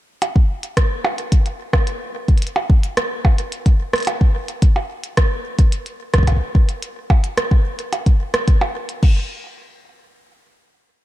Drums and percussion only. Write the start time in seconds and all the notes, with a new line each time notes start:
0.22 closed hi-hat, percussion blips
0.36 kick
0.63 closed hi-hat
0.77 kick, cross-stick, closed hi-hat
1.05 percussion blips
1.18 closed hi-hat
1.32 kick, closed hi-hat
1.46 closed hi-hat
1.73 kick, cross-stick, percussion blips
1.87 closed hi-hat
2.28 kick, closed hi-hat
2.38 closed hi-hat
2.42 closed hi-hat
2.47 closed hi-hat
2.56 percussion blips
2.70 kick
2.83 closed hi-hat
2.97 cross-stick, closed hi-hat
3.25 kick, percussion blips
3.38 closed hi-hat
3.52 closed hi-hat
3.66 kick, closed hi-hat
3.93 cross-stick, closed hi-hat
3.96 closed hi-hat
3.98 closed hi-hat
4.00 closed hi-hat
4.03 closed hi-hat
4.05 closed hi-hat
4.07 closed hi-hat, percussion blips
4.21 kick
4.48 closed hi-hat
4.62 kick, closed hi-hat
4.76 percussion blips
5.04 closed hi-hat
5.17 kick, cross-stick, closed hi-hat
5.59 kick, closed hi-hat
5.72 closed hi-hat
5.86 closed hi-hat
6.14 kick, cross-stick, closed hi-hat
6.18 kick
6.23 kick
6.27 kick, closed hi-hat, percussion blips
6.32 kick
6.37 kick
6.55 kick
6.69 closed hi-hat
6.83 closed hi-hat
7.10 kick, percussion blips
7.24 closed hi-hat
7.38 cross-stick, closed hi-hat
7.51 kick
7.79 closed hi-hat
7.93 closed hi-hat, percussion blips
8.06 kick, closed hi-hat
8.34 cross-stick, closed hi-hat
8.48 kick, closed hi-hat
8.61 percussion blips
8.89 closed hi-hat
9.03 kick, crash